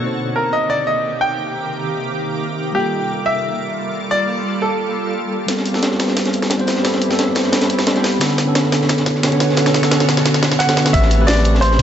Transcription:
0.00 ambient pad C3 D#3 A#3 G4 D6, tine electric piano A#3 C4 D#4
0.06 tine electric piano C5
0.36 grand piano A#4
0.53 grand piano D#5
0.70 grand piano D5
0.87 grand piano D#5
1.21 grand piano G5
2.73 tine electric piano G3 A#3, ambient pad G3 F4 A4, grand piano G4
2.77 tine electric piano F4 A4
3.26 grand piano E5
4.11 grand piano D5
4.62 grand piano A4
5.47 tine electric piano G3 B3 C4 A4, ambient pad A3 E4 G4 B5, snare, closed hi-hat
5.57 snare
5.66 closed hi-hat
5.72 tine electric piano G3 B3 C4 A4, snare
5.83 snare, closed hi-hat
5.91 snare
5.96 tine electric piano G3 B4, snare, closed hi-hat
6.01 tine electric piano C4 C5
6.08 snare
6.17 snare, closed hi-hat
6.25 snare, closed hi-hat
6.33 closed hi-hat
6.42 snare
6.50 snare, closed hi-hat
6.58 tine electric piano G3 B3 C4 C5, closed hi-hat
6.66 tine electric piano G3 B3 C4 B4, snare, closed hi-hat
6.76 snare
6.83 tine electric piano G3 B3 C4 A4, snare, closed hi-hat
6.93 snare
7.01 closed hi-hat
7.09 tine electric piano G3 B3 C4 A4, snare
7.19 snare, closed hi-hat
7.32 tine electric piano G3 B4, snare, closed hi-hat
7.37 tine electric piano C4 C5
7.44 snare
7.52 snare, closed hi-hat
7.61 snare, closed hi-hat
7.70 closed hi-hat
7.78 snare
7.87 snare, closed hi-hat
7.94 tine electric piano G3 B3 C4 C5, snare, closed hi-hat
8.02 tine electric piano G3 B3 C4 B4, snare, closed hi-hat
8.19 ambient pad B2 D3 F#4 A4 C#5, tine electric piano D3 B3 C#4 A4, snare, closed hi-hat
8.29 snare
8.38 snare, closed hi-hat
8.45 tine electric piano D3 B3 C#4 A4
8.55 snare, closed hi-hat
8.63 snare
8.69 tine electric piano D3 B3, snare, closed hi-hat
8.73 tine electric piano C#4 C#5
8.81 snare
8.89 snare, closed hi-hat
8.97 snare, closed hi-hat
9.06 snare, closed hi-hat
9.15 snare
9.23 snare, closed hi-hat
9.30 tine electric piano D3 B3 C#4 C#5, closed hi-hat
9.39 tine electric piano D3 B3 C#4 B4, snare, closed hi-hat
9.49 snare
9.56 tine electric piano D3 B3 C#4 A4, snare, closed hi-hat
9.66 snare
9.74 snare, closed hi-hat
9.82 tine electric piano D3 B3 C#4 A4, snare
9.91 snare, closed hi-hat
10.00 snare
10.05 tine electric piano D3 B3, snare, closed hi-hat, open hi-hat
10.10 tine electric piano C#4 C#5
10.17 snare
10.26 snare, closed hi-hat
10.34 snare, closed hi-hat
10.43 snare, closed hi-hat
10.51 snare
10.59 grand piano F#5, snare, closed hi-hat
10.67 tine electric piano D3 B3 C#4 C#5, snare, closed hi-hat
10.75 tine electric piano D3 B3 C#4 B4, snare, closed hi-hat
10.86 snare, closed hi-hat
10.92 sub bass A1, tine electric piano A3 C4 G4 B4, ambient pad C4 G4 B5, grand piano E5, kick, closed hi-hat
11.02 snare
11.11 closed hi-hat
11.18 tine electric piano A3 C4 G4 B4
11.27 grand piano D5, snare, closed hi-hat
11.37 snare
11.42 tine electric piano A3 C4, closed hi-hat
11.46 tine electric piano G4 D5
11.55 snare
11.61 grand piano C5, closed hi-hat
11.71 snare

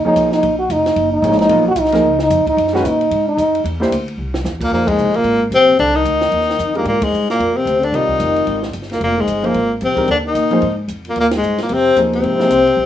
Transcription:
0.04 grand piano F3 A#3 D#4 G#4 C#5, trombone D#4, muted upright bass stroke
0.16 upright bass B1, hi-hat pedal, ride
0.32 trombone D#4, snare
0.43 upright bass A#1, ride
0.59 trombone F#4
0.69 upright bass F1, trombone D#4, hi-hat pedal, ride
0.86 snare, ride
0.96 upright bass F#1, ride
1.13 trombone D#4
1.22 upright bass G#1, grand piano F3 A#3 D#4 G#4 C#5, hi-hat pedal, ride
1.32 snare
1.39 trombone D#4, snare, ride
1.49 upright bass A#1, grand piano F#3 B3 F4 A#4 D#5, ride
1.68 trombone F#4
1.76 upright bass B1, hi-hat pedal, ride
1.80 trombone D#4
1.85 snare
1.92 grand piano F3 A#3 D#4 G#4 A#4, snare, ride
2.04 upright bass C#2
2.19 trombone D#4, snare
2.30 upright bass F2, hi-hat pedal, ride
2.46 trombone D#4, muted upright bass stroke, kick, ride
2.57 upright bass F#2, ride
2.67 snare
2.73 grand piano D#3 G#3 C#4 F#4 B4, trombone F#4, snare
2.84 upright bass A#2, trombone D#4, hi-hat pedal, ride
3.01 ride
3.11 upright bass G#2, ride
3.28 trombone D#4
3.37 upright bass F#2, hi-hat pedal, ride
3.55 ride
3.64 upright bass E2, ride
3.80 grand piano A#3 D4 E4 G4 C5, snare
3.90 upright bass D2, hi-hat pedal, ride
4.08 ride
4.18 upright bass C2
4.34 snare
4.44 upright bass E2, snare, hi-hat pedal
4.60 trombone A#2, tenor saxophone A#3, kick, crash
4.71 upright bass F2, trombone A#2, grand piano F3 A#3 D#4 G#4 C5, tenor saxophone A#3
4.87 trombone G#2, tenor saxophone G#3, kick, ride
4.97 upright bass C2, hi-hat pedal
5.06 upright bass G#1
5.14 upright bass F1, trombone A#2, tenor saxophone A#3, ride
5.24 upright bass G#1, ride
5.51 upright bass A#1, trombone C3, hi-hat pedal, ride
5.55 tenor saxophone C4
5.78 upright bass C2, trombone D3, tenor saxophone D4, ride
5.94 trombone D#3, tenor saxophone D#4
6.05 upright bass D2, hi-hat pedal, ride
6.21 snare, ride
6.32 upright bass D#2, ride
6.41 snare
6.50 snare
6.59 upright bass F2, hi-hat pedal, ride
6.74 trombone A#2, grand piano D#3 G#3 D4 G4 A#4, tenor saxophone A#3, ride
6.85 upright bass G#2, trombone A#2, tenor saxophone A#3, ride
7.02 trombone G#2, tenor saxophone G#3, kick, ride
7.13 upright bass G2, hi-hat pedal
7.30 trombone A#2, tenor saxophone A#3, snare, ride
7.39 upright bass F2, ride
7.57 trombone C3, tenor saxophone C4
7.65 upright bass D2, hi-hat pedal, ride
7.83 trombone D3, tenor saxophone D4, ride
7.92 upright bass C2, trombone D#3, grand piano G3 C4 F4 A#4 D5, tenor saxophone D#4, ride
8.09 kick
8.20 upright bass F1, hi-hat pedal, ride
8.36 ride
8.47 upright bass G#1, ride
8.62 snare
8.73 upright bass G1, hi-hat pedal, ride
8.82 snare
8.89 trombone A#2, tenor saxophone A#3, snare, ride
9.00 upright bass F1, trombone A#2, tenor saxophone A#3, ride
9.17 trombone G#2
9.21 tenor saxophone G#3
9.27 upright bass G1, hi-hat pedal, ride
9.42 trombone A#2, grand piano F3 A#3 D#4 G#4 C5, ride
9.47 tenor saxophone A#3
9.54 upright bass G#1, ride
9.81 upright bass A#1, trombone C3, tenor saxophone C4, hi-hat pedal, ride
9.96 grand piano D#3 G#3 D4 G4 A#4, kick, ride
10.08 upright bass D#2, trombone D3, tenor saxophone D4, ride
10.25 trombone D#3, tenor saxophone D#4
10.35 upright bass A#2, hi-hat pedal, ride
10.51 grand piano F3 A#3 D#4 G#4 C5, ride
10.62 upright bass G#2, ride
10.88 upright bass F2, hi-hat pedal, ride
11.05 trombone A#2, ride
11.10 tenor saxophone A#3
11.16 upright bass D#2, trombone A#2, ride
11.20 tenor saxophone A#3
11.31 trombone G#2, snare, ride
11.37 tenor saxophone G#3
11.42 upright bass G2, hi-hat pedal
11.58 trombone A#2, snare, ride
11.63 tenor saxophone A#3
11.69 upright bass F2, trombone C3, ride
11.74 tenor saxophone C4
11.96 upright bass D#2, grand piano F3 A#3 D#4 G#4 C5, hi-hat pedal, ride
12.11 trombone C3, ride
12.16 tenor saxophone C4
12.23 upright bass G#1, ride
12.39 grand piano F3 A#3 D#4 G#4 C5, snare
12.49 upright bass C2, hi-hat pedal, ride
12.67 ride
12.77 upright bass A#1

